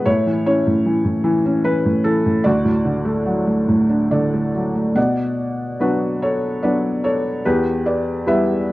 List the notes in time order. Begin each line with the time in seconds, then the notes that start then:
0.05 A2 E4 C#5
0.26 E3
0.46 C#4 E4 C#5
0.67 A2
0.86 E3
1.04 A2
1.24 E3
1.46 C#4
1.64 E3 B4
1.85 A2
2.04 E3 A4
2.26 A2
2.44 D2 F#4 D5
2.65 A2
2.85 D3
3.05 A3
3.25 F#3
3.47 A3
3.68 A2
3.90 D4
4.11 D3 A4 D5
4.34 A3
4.54 F#3
4.75 A3
4.95 B2 D5 F#5
5.80 F#3 B3 D4 F#4 B4
6.22 A4 C#5
6.63 F#3 B3 D4 B4 D5
7.04 A4 C#5
7.46 E2 G4 B4
7.86 B4 D5
8.26 G3 B3 E4 B4 E5